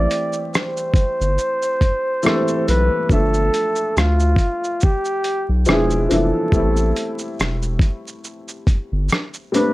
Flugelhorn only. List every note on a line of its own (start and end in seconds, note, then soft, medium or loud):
0.00 0.50 D5 loud
0.56 2.64 C5 loud
2.70 3.14 B4 loud
3.12 4.00 A4 loud
3.98 4.85 F4 medium
4.84 5.52 G4 loud
5.69 6.05 G#4 medium
6.05 6.13 G#4 medium
6.11 7.39 A4 medium
9.55 9.73 B4 loud